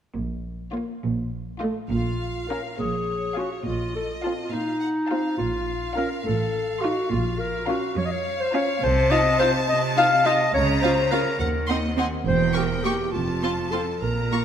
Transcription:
0.13 double bass section A#1, cello section A#2
0.72 viola section A#3, violin section F4 C#5
1.02 double bass section A#1, cello section A#2
1.61 viola section A3, violin section F4 D#5
1.90 double bass section A#1, cello section A#2, clarinet F4, violin section F5
2.48 viola section C#4 F4, clarinet A#4, violin section F5 A#5
2.77 double bass section A#1, cello section A#2, clarinet G#4, violin section C#5
3.36 viola section C#4 F4, clarinet F#4, violin section F5 G#5
3.65 double bass section A#1, cello section A#2, clarinet F4, violin section D#5
3.96 clarinet A4
4.22 viola section C4 F4, clarinet F4, violin section F5 A5
4.44 clarinet F4
4.51 cello section A#2, clarinet D#4, violin section F5
4.80 violin section F#5
5.07 viola section F4, violin section F5 A5
5.12 viola section C4
5.38 double bass section A#1, cello section A#2, clarinet F4
5.95 viola section C#4 F4, clarinet A#4, violin section F5 A#5
6.24 double bass section A1, cello section A2, clarinet A4
6.81 viola section D#4 F4, clarinet F#4, violin section F5 C6
7.10 double bass section A#1, cello section A#2, clarinet F4
7.39 clarinet A#4
7.67 viola section C#4 F4, clarinet F#4, violin section F5 A#5
7.97 cello section F2, clarinet C#5, violin section F5
8.05 clarinet D#5
8.11 clarinet C#5
8.40 clarinet C5
8.53 viola section C#4 F4, clarinet C#5, violin section F5 A#5
8.82 double bass section C2, cello section C3, clarinet C5, violin section A5
9.10 viola section D#4 F4, clarinet D#5, violin section F5 A5
9.39 viola section D#4 F4, clarinet C5, violin section F5 A5
9.68 cello section C3, clarinet D#5
9.96 viola section D#4 F4, violin section F5 A5, clarinet F5
10.25 viola section D#4 F4, clarinet D#5, violin section F5 A5
10.53 double bass section C#2, cello section C#3, clarinet C#5, violin section A#5
10.82 viola section C#4 F4, clarinet C5, violin section F5 A#5
11.11 viola section C#4 F4, clarinet A#4, violin section F5 A#5
11.39 cello section D#2, double bass section D#2, clarinet A#4, violin section F#5
11.68 viola section C4 D#4, violin section D#5 F#5 C6
11.97 viola section C4 D#4, violin section F#5 G#5 C6
12.25 double bass section E1, cello section E2, clarinet C5, violin section G5
12.54 viola section A#3 G4, clarinet A#4, violin section G5 C#6
12.84 viola section A#3 G4, clarinet G4, violin section G5 C#6
13.12 double bass section F1, cello section F2, clarinet F4, violin section A5
13.42 viola section C4 F4, violin section A5 C6
13.71 viola section C4 F4, clarinet A4, violin section A5 C6
14.01 double bass section A#1, cello section A#2, clarinet A#4, violin section A#5
14.32 viola section A#3 F4, violin section A#5 C#6

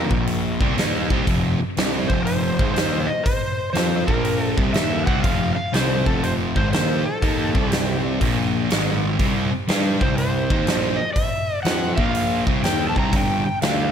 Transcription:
Already playing: distorted electric guitar C4 F4
0.10 picked electric bass A#1, distorted electric guitar A#2 F3 A#3, kick
0.27 open hi-hat
0.61 picked electric bass C2, distorted electric guitar C3 G3 C4, kick
0.77 picked electric bass D#2, distorted electric guitar D#3 A#3 D#4, snare, open hi-hat
1.10 picked electric bass C2, distorted electric guitar C3 G3 C4, kick
1.27 picked electric bass F1, distorted electric guitar F2 C3 F3, kick, open hi-hat
1.60 muted distorted electric guitar stroke, muted picked electric bass stroke
1.77 picked electric bass C2, distorted electric guitar C3 G3 C4, snare, open hi-hat
2.09 picked electric bass F1, distorted electric guitar F2 C3 F3, electric slide guitar C5, kick
2.25 electric slide guitar C5, open hi-hat
2.59 picked electric bass G#1, distorted electric guitar G#2 D#3 G#3, kick
2.74 picked electric bass D#2, distorted electric guitar D#3 A#3 D#4, electric slide guitar C5, open hi-hat
2.78 snare
3.06 electric slide guitar D#5
3.24 electric slide guitar C5, kick, open hi-hat
3.73 picked electric bass F2, distorted electric guitar F3 C4 F4, electric slide guitar C5, snare, open hi-hat
4.07 picked electric bass A#1, distorted electric guitar A#2 F3 A#3, electric slide guitar A#4, kick
4.25 open hi-hat
4.42 electric slide guitar A4
4.58 picked electric bass C2, distorted electric guitar C3 G3 C4, kick
4.73 picked electric bass D#2, distorted electric guitar D#3 A#3 D#4, electric slide guitar E5, snare, open hi-hat
5.06 picked electric bass C2, distorted electric guitar C3 G3 C4, electric slide guitar F#5, kick
5.23 picked electric bass F1, distorted electric guitar F2 C3 F3, electric slide guitar F5, kick, open hi-hat
5.55 electric slide guitar F5, muted distorted electric guitar stroke, muted picked electric bass stroke
5.73 picked electric bass C2, distorted electric guitar C3 G3 C4, electric slide guitar C5, snare, open hi-hat
6.06 picked electric bass F1, distorted electric guitar F2 C3 F3, electric slide guitar A4, kick
6.23 electric slide guitar C5, open hi-hat
6.55 picked electric bass G#1, distorted electric guitar G#2 D#3 G#3, electric slide guitar C5, kick
6.72 picked electric bass D#2, distorted electric guitar D#3 A#3 D#4, electric slide guitar C5, snare, open hi-hat
7.05 electric slide guitar A4
7.22 picked electric bass D#2, distorted electric guitar D#3 A#3 D#4, kick, open hi-hat
7.53 picked electric bass C2, distorted electric guitar C3 G3 C4, kick
7.72 electric slide guitar G4, snare, open hi-hat
8.21 picked electric bass A#1, distorted electric guitar A#2 F3 A#3, kick, open hi-hat
8.69 picked electric bass G#1, distorted electric guitar G#2 D#3 G#3, snare, open hi-hat
9.19 picked electric bass C2, distorted electric guitar C3 G3 C4, kick, open hi-hat
9.52 muted distorted electric guitar stroke, muted picked electric bass stroke
9.68 picked electric bass G2, distorted electric guitar G3 D4 G4, snare, open hi-hat
10.01 picked electric bass C2, distorted electric guitar C3 G3 C4, electric slide guitar C5, kick
10.18 electric slide guitar C5, open hi-hat
10.50 picked electric bass D#2, distorted electric guitar D#3 A#3 D#4, kick
10.67 picked electric bass A#1, distorted electric guitar A#2 F3 A#3, snare, open hi-hat
10.97 electric slide guitar D#5
11.13 electric slide guitar E5, kick, open hi-hat
11.63 picked electric bass F2, distorted electric guitar F3 C4 F4, electric slide guitar F#5, snare, open hi-hat
11.96 picked electric bass A#1, distorted electric guitar A#2 F3 A#3, electric slide guitar F5, kick
12.15 open hi-hat
12.47 picked electric bass C2, distorted electric guitar C3 G3 C4, kick
12.64 picked electric bass D#2, distorted electric guitar D#3 A#3 D#4, electric slide guitar G5, snare, open hi-hat
12.89 electric slide guitar A5
12.96 picked electric bass C2, distorted electric guitar C3 G3 C4, electric slide guitar A#5, kick
13.13 picked electric bass G1, distorted electric guitar G2 D3 G3, electric slide guitar G5, kick, open hi-hat
13.46 electric slide guitar G5, muted picked electric bass stroke, muted distorted electric guitar stroke
13.62 picked electric bass D2, distorted electric guitar D3 A3 D4, electric slide guitar F5, snare, open hi-hat

